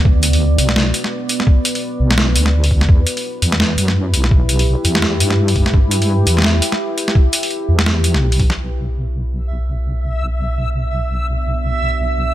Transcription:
0.00 0.57 D2 loud
0.00 2.85 B3 medium
0.00 2.85 F#4 medium
0.00 8.53 B4 medium
0.00 2.85 D5 medium
0.05 kick loud
0.23 closed hi-hat medium
0.33 open hi-hat medium
0.58 0.93 B1 medium
0.58 closed hi-hat medium
0.69 snare medium
0.76 snare loud
0.94 closed hi-hat medium
1.04 snare soft
1.29 closed hi-hat medium
1.40 snare medium
1.47 kick loud
1.65 closed hi-hat medium
1.75 open hi-hat medium
2.00 2.37 B1 medium
2.11 snare medium
2.18 snare loud
2.36 2.88 D2 medium
2.36 closed hi-hat medium
2.46 snare medium
2.64 open hi-hat medium
2.71 kick medium
2.81 snare soft
2.89 3.06 E2 loud
2.89 8.53 E4 medium
2.89 8.53 G4 medium
2.89 kick loud
3.07 closed hi-hat medium
3.17 open hi-hat medium
3.42 3.77 E2 medium
3.42 closed hi-hat medium
3.52 snare medium
3.60 snare loud
3.78 4.15 F#2 medium
3.78 closed hi-hat medium
3.88 snare medium
4.13 4.76 B1 loud
4.13 closed hi-hat medium
4.24 snare soft
4.31 kick loud
4.49 closed hi-hat medium
4.59 open hi-hat medium
4.85 5.22 E2 medium
4.85 closed hi-hat medium
4.95 snare medium
5.02 snare loud
5.20 5.65 G2 medium
5.20 closed hi-hat medium
5.30 snare medium
5.48 open hi-hat medium
5.56 kick medium
5.56 open hi-hat soft
5.66 6.26 G2 loud
5.66 snare medium
5.74 kick loud
5.91 closed hi-hat medium
6.02 open hi-hat medium
6.27 6.61 E2 medium
6.27 closed hi-hat medium
6.37 snare soft
6.42 snare medium
6.44 snare loud
6.62 closed hi-hat medium
6.72 snare medium
6.98 closed hi-hat medium
7.08 snare medium
7.15 kick loud
7.33 closed hi-hat medium
7.43 open hi-hat medium
7.51 closed hi-hat soft
7.69 8.16 E2 medium
7.79 snare medium
7.86 snare loud
8.04 closed hi-hat medium
8.14 8.49 B1 medium
8.14 snare medium
8.32 open hi-hat medium
8.40 kick medium
8.40 open hi-hat soft
8.50 snare medium
8.57 12.34 B1 medium
8.57 12.34 B3 medium
8.57 12.34 F#4 medium
8.57 12.34 B4 medium
8.57 12.34 D5 medium
8.57 12.34 E5 medium

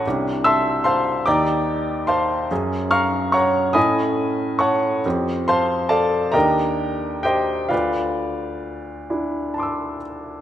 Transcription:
0.07 1.23 C2 soft
0.07 1.23 D4 soft
0.07 1.23 G4 soft
0.44 0.82 E5 medium
0.44 0.83 A5 medium
0.44 0.82 C6 medium
0.44 0.85 E6 medium
0.84 1.23 C5 soft
0.84 1.23 F5 soft
0.84 1.23 A5 soft
0.84 1.25 C6 medium
1.26 2.47 D#2 soft
1.26 2.47 D#4 soft
1.26 2.47 G4 soft
1.26 2.05 D5 soft
1.26 2.05 G5 soft
1.26 2.05 A#5 soft
1.26 2.08 D6 medium
2.07 2.48 C5 soft
2.07 2.47 F5 soft
2.07 2.47 A5 soft
2.07 2.50 C6 medium
2.51 3.73 F#2 soft
2.51 3.73 C#4 soft
2.51 3.73 G#4 soft
2.91 3.32 F5 medium
2.91 3.32 A#5 soft
2.91 3.31 C#6 medium
2.91 3.34 F6 medium
3.32 3.73 C#5 soft
3.32 3.73 F#5 soft
3.32 3.73 A#5 soft
3.32 3.75 C#6 medium
3.73 5.00 A2 soft
3.73 5.00 C#4 soft
3.73 5.00 A4 soft
3.73 4.56 D#5 soft
3.73 4.55 G#5 soft
3.73 4.56 B5 soft
3.73 4.59 D#6 medium
4.59 5.01 C#5 soft
4.59 5.02 F#5 soft
4.59 5.02 A5 soft
4.59 5.04 C#6 medium
5.06 6.31 F2 soft
5.06 6.31 C4 soft
5.06 6.31 G4 soft
5.48 5.88 C5 medium
5.48 5.88 F5 soft
5.48 5.88 A5 soft
5.48 5.90 C6 medium
5.89 6.31 A4 soft
5.89 6.31 D5 soft
5.89 6.31 F5 soft
5.89 6.34 A5 medium
6.32 7.67 D#2 soft
6.32 7.67 D4 soft
6.32 7.23 G4 soft
6.32 7.21 A#4 soft
6.32 7.20 D#5 soft
6.32 7.21 G5 soft
6.32 7.24 A#5 medium
7.23 7.68 G4 soft
7.23 7.68 C5 soft
7.23 7.68 D#5 soft
7.23 7.71 G5 medium
7.69 10.41 D2 soft
7.69 9.96 F4 soft
7.69 9.97 B4 soft
7.69 9.97 D5 soft
7.69 10.00 F5 soft
9.10 10.41 D4 soft
9.10 10.41 E4 soft
9.54 10.41 A5 soft
9.54 10.41 C6 soft
9.60 10.41 D6 soft
9.60 10.41 E6 soft

